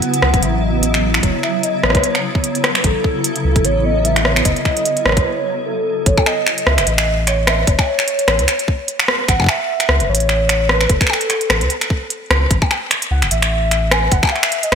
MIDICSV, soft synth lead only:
0, 0, Header, 1, 2, 480
1, 0, Start_track
1, 0, Tempo, 402685
1, 1466, Time_signature, 4, 2, 24, 8
1, 17582, End_track
2, 0, Start_track
2, 0, Title_t, "Soft synth lead"
2, 0, Program_c, 0, 80
2, 0, Note_on_c, 0, 78, 121
2, 508, Note_on_c, 0, 76, 102
2, 525, Note_off_c, 0, 78, 0
2, 748, Note_on_c, 0, 75, 109
2, 766, Note_off_c, 0, 76, 0
2, 1467, Note_on_c, 0, 73, 109
2, 1485, Note_off_c, 0, 75, 0
2, 1700, Note_off_c, 0, 73, 0
2, 1707, Note_on_c, 0, 76, 97
2, 1930, Note_off_c, 0, 76, 0
2, 1947, Note_on_c, 0, 75, 105
2, 2187, Note_on_c, 0, 73, 109
2, 2205, Note_off_c, 0, 75, 0
2, 3147, Note_off_c, 0, 73, 0
2, 3387, Note_on_c, 0, 69, 98
2, 4347, Note_on_c, 0, 73, 95
2, 4365, Note_off_c, 0, 69, 0
2, 4587, Note_on_c, 0, 75, 92
2, 4605, Note_off_c, 0, 73, 0
2, 4826, Note_on_c, 0, 76, 102
2, 4843, Note_off_c, 0, 75, 0
2, 5067, Note_on_c, 0, 73, 96
2, 5085, Note_off_c, 0, 76, 0
2, 5300, Note_off_c, 0, 73, 0
2, 5307, Note_on_c, 0, 75, 107
2, 5953, Note_off_c, 0, 75, 0
2, 5953, Note_on_c, 0, 75, 64
2, 6029, Note_on_c, 0, 73, 90
2, 6047, Note_off_c, 0, 75, 0
2, 6740, Note_off_c, 0, 73, 0
2, 6747, Note_on_c, 0, 69, 93
2, 7227, Note_on_c, 0, 73, 95
2, 7245, Note_off_c, 0, 69, 0
2, 7461, Note_off_c, 0, 73, 0
2, 7468, Note_on_c, 0, 75, 104
2, 7914, Note_off_c, 0, 75, 0
2, 7947, Note_on_c, 0, 76, 98
2, 8188, Note_on_c, 0, 75, 102
2, 8205, Note_off_c, 0, 76, 0
2, 8669, Note_on_c, 0, 73, 101
2, 8687, Note_off_c, 0, 75, 0
2, 8909, Note_on_c, 0, 76, 108
2, 8927, Note_off_c, 0, 73, 0
2, 9149, Note_on_c, 0, 73, 115
2, 9167, Note_off_c, 0, 76, 0
2, 10828, Note_off_c, 0, 73, 0
2, 11069, Note_on_c, 0, 78, 116
2, 11309, Note_on_c, 0, 76, 117
2, 11327, Note_off_c, 0, 78, 0
2, 12021, Note_off_c, 0, 76, 0
2, 12028, Note_on_c, 0, 73, 106
2, 12694, Note_off_c, 0, 73, 0
2, 12694, Note_on_c, 0, 73, 69
2, 12750, Note_on_c, 0, 71, 99
2, 12768, Note_off_c, 0, 73, 0
2, 12990, Note_on_c, 0, 69, 93
2, 13008, Note_off_c, 0, 71, 0
2, 13948, Note_off_c, 0, 69, 0
2, 15628, Note_on_c, 0, 78, 103
2, 15736, Note_off_c, 0, 78, 0
2, 15868, Note_on_c, 0, 76, 107
2, 16588, Note_on_c, 0, 80, 113
2, 16606, Note_off_c, 0, 76, 0
2, 16827, Note_on_c, 0, 78, 119
2, 16845, Note_off_c, 0, 80, 0
2, 17065, Note_on_c, 0, 76, 106
2, 17083, Note_off_c, 0, 78, 0
2, 17439, Note_on_c, 0, 75, 109
2, 17457, Note_off_c, 0, 76, 0
2, 17582, Note_off_c, 0, 75, 0
2, 17582, End_track
0, 0, End_of_file